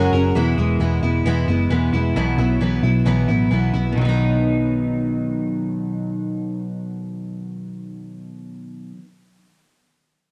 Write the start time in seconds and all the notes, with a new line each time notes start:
Already playing: F#3 G#3 C#4 F#4 G#4 A#4 C#5 F#5
0.13 F#1 C#4 F#4 A#4
0.35 E1 E3 G#3 B3 E4
0.58 E1 G#3 B3 E4
0.80 E1 E3 G#3 B3 E4
1.02 E1 G#3 B3 E4
1.25 E1 E3 G#3 B3 E4
1.48 F#1 G#3 B3 E4
1.70 E1 E3 G#3 B3 E4
1.93 E1 G#3 B3 E4
2.16 B1 B2 E3 F#3 B3 E4
2.38 B1 F#3 B3 E4
2.61 B1 E3 F#3 B3 E4
2.83 B1 F#3 B3 E4
3.06 B1 B2 E3 F#3 B3 E4
3.28 A1 F#3 B3 E4
3.51 B1 E3 F#3 B3 E4
3.74 B1 F#3 B3 E4
3.93 B2
3.97 B1 D#3
4.01 F#3 B3
4.08 D#4